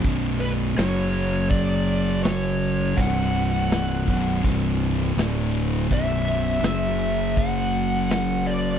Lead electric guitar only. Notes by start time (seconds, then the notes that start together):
0.40 B4
0.78 C#5
1.50 D5
2.23 C#5
2.97 F#5
5.93 E5
6.65 E5
7.38 F#5
8.11 F#5
8.47 D5